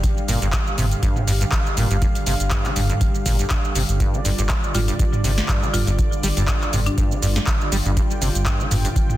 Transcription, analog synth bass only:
0.28 G1
0.42 G1
0.78 G1
1.27 G1
1.77 G1
1.90 G1
2.27 G1
2.40 G1
2.76 G1
3.26 G1
3.75 G1
3.89 G1
4.25 G1
4.38 G1
4.75 G1
5.24 G1
5.74 G1
5.87 G1
6.23 G1
6.37 G1
6.73 G1
7.22 G1
7.72 G1
7.86 G1
8.22 G1
8.35 G1
8.71 G1

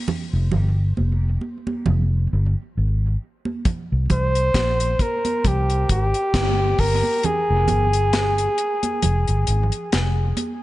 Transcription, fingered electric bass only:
0.33 F1
0.54 G1
0.98 F1
1.88 F1
2.33 G1
2.77 G#1
3.92 C2
4.11 C2
4.55 A#1
5.46 C2
5.90 G#1
6.35 G1
6.79 G1
7.50 F1
7.70 G1
9.04 F1
9.29 G1
9.48 G#1
9.93 F1

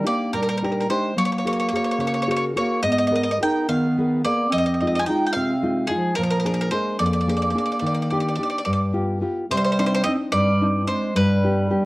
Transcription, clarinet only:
0.07 A#3
0.35 G3
0.89 G#3
1.16 A#3
2.58 A#3
2.87 B3
3.43 D#4
3.69 B3
4.25 A#3
4.50 C4
5.02 F4
5.07 D#4
5.29 D#4
5.36 C4
5.93 F3
6.16 F3
6.72 G#3
6.99 A#3
9.48 G3
10.04 C4
10.32 G3
10.89 G#3
11.16 G3

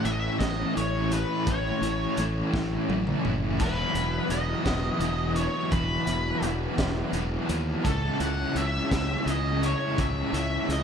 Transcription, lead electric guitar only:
0.05 E5
0.12 D#5
0.20 E5
0.40 D#5
0.77 C#5
1.13 B4
1.47 C#5
3.61 B4
4.31 D#5
5.36 C#5
5.71 B4
7.84 A4
8.21 F#5
8.57 E5
9.30 D#5
9.65 C#5
10.01 E5
10.35 E5
10.72 D#5

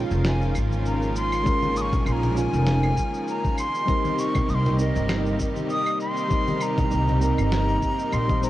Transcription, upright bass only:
0.11 F1
0.55 G#1
2.07 A#1
2.53 F1
4.49 C2
4.96 G1
6.91 C2
7.38 G1
8.13 A#1

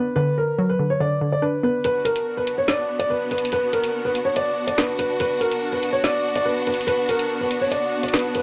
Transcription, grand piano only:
Already playing: B4
0.16 B4
0.38 A#4
0.69 B4
0.90 C#5
1.00 D5
1.32 D5
1.42 B4
1.64 B4
1.85 B4
2.05 A#4
2.37 B4
2.58 C#5
2.69 D5
2.99 D5
3.10 B4
3.31 B4
3.53 B4
3.73 A#4
4.05 B4
4.25 C#5
4.37 D5
4.67 D5
4.78 B4
4.99 B4
5.20 B4
5.41 A#4
5.72 B4
5.93 C#5
6.04 D5
6.36 D5
6.46 B4
6.67 B4
6.87 B4
7.09 A#4
7.41 B4
7.61 C#5
7.72 D5
8.04 D5
8.13 B4
8.35 B4

